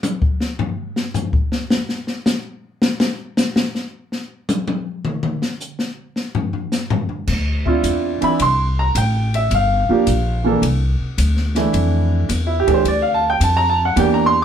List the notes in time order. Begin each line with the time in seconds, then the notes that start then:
0.03 hi-hat pedal, high tom
0.22 kick
0.40 snare
0.59 floor tom
0.96 snare
1.14 floor tom, hi-hat pedal
1.33 kick
1.52 snare
1.70 snare
1.89 snare
2.07 snare
2.26 snare, hi-hat pedal
2.82 snare
3.00 snare
3.37 snare, hi-hat pedal
3.56 snare
3.75 snare
4.12 snare
4.49 hi-hat pedal, high tom
4.67 high tom
5.05 mid tom
5.23 mid tom
5.42 snare
5.60 hi-hat pedal
5.79 snare
6.16 snare
6.35 floor tom
6.53 floor tom
6.72 snare, hi-hat pedal
6.90 floor tom
7.09 floor tom
7.27 D2, kick, snare, crash
7.65 C4 D4 E4 F4, kick
7.83 E2, hi-hat pedal, ride
8.21 E3 C4 D4 E4 B5, muted upright bass stroke, ride
8.40 C2 C6, ride
8.79 A#5
8.95 A1 G5, hi-hat pedal, ride
9.34 E5, ride
9.51 G1, ride
9.55 F5
9.89 F3 A#3 D4 G4, muted upright bass stroke
10.07 A#1, hi-hat pedal, ride
10.44 E3 A#3 D4 A4
10.62 C2, ride
11.00 muted upright bass stroke
11.18 D2, hi-hat pedal, ride
11.37 snare
11.55 E3 A3 D4 E4, snare, ride
11.73 F2, ride
12.29 E2, snare, hi-hat pedal, ride
12.47 E4
12.60 G4
12.67 E3 A3 D4 G4, muted upright bass stroke, kick, ride
12.74 C5
12.84 D2 D5, ride
13.02 F5
13.14 A5
13.30 G5
13.40 F2 A5, hi-hat pedal, ride
13.57 A#5
13.70 A5
13.85 F#5
13.96 E2 E3 A#3 D4 G4 G5, ride
14.14 A#5
14.26 C6